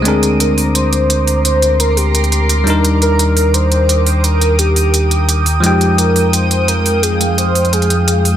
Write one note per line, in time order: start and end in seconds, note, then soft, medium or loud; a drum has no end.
0.02 2.65 D2 medium
0.02 2.63 G#3 medium
0.02 2.64 C4 medium
0.02 0.41 G#4 loud
0.02 5.60 A#4 medium
0.02 2.64 A#5 medium
0.02 2.64 C6 medium
0.02 5.59 D6 medium
0.02 closed hi-hat medium
0.06 2.65 D4 medium
0.06 2.66 A#4 medium
0.23 closed hi-hat medium
0.40 0.74 A#4 loud
0.40 closed hi-hat medium
0.58 open hi-hat medium
0.75 1.41 C5 loud
0.75 closed hi-hat medium
0.93 closed hi-hat medium
1.10 closed hi-hat medium
1.27 open hi-hat medium
1.45 1.81 C5 loud
1.45 closed hi-hat medium
1.62 closed hi-hat medium
1.79 1.98 A#4 loud
1.79 closed hi-hat medium
1.97 2.67 G4 medium
1.97 open hi-hat medium
2.15 closed hi-hat medium
2.24 closed hi-hat soft
2.32 closed hi-hat medium
2.49 closed hi-hat medium
2.64 5.62 D#2 medium
2.64 5.43 G3 medium
2.64 5.44 D4 medium
2.64 8.37 G5 medium
2.64 8.37 D#6 medium
2.64 open hi-hat medium
2.68 5.45 D#4 medium
2.68 5.46 A#4 medium
2.84 closed hi-hat medium
3.02 3.55 A#4 loud
3.02 closed hi-hat medium
3.19 closed hi-hat medium
3.37 open hi-hat medium
3.54 4.06 C5 loud
3.54 closed hi-hat medium
3.72 closed hi-hat medium
3.89 closed hi-hat medium
4.06 4.26 C5 loud
4.06 open hi-hat medium
4.24 4.58 A#4 loud
4.24 closed hi-hat medium
4.41 closed hi-hat medium
4.59 5.25 G4 medium
4.59 closed hi-hat medium
4.76 open hi-hat medium
4.94 closed hi-hat medium
5.11 closed hi-hat medium
5.29 closed hi-hat medium
5.46 open hi-hat medium
5.60 8.37 F2 medium
5.60 8.37 F3 medium
5.60 8.37 G#3 medium
5.60 8.37 D#4 medium
5.60 5.96 G4 medium
5.60 8.37 F5 medium
5.60 closed hi-hat medium
5.66 8.37 G5 medium
5.81 closed hi-hat medium
5.98 6.35 A#4 medium
5.98 closed hi-hat medium
6.16 open hi-hat medium
6.33 6.70 C5 loud
6.33 closed hi-hat medium
6.51 closed hi-hat medium
6.68 7.04 A#4 medium
6.68 closed hi-hat medium
6.86 open hi-hat medium
7.03 7.37 G#4 loud
7.03 closed hi-hat medium
7.21 closed hi-hat medium
7.38 7.74 C5 medium
7.38 closed hi-hat medium
7.55 open hi-hat medium
7.65 closed hi-hat soft
7.73 8.25 G#4 medium
7.73 closed hi-hat medium
7.82 closed hi-hat soft
7.90 closed hi-hat medium
8.08 closed hi-hat loud
8.25 open hi-hat medium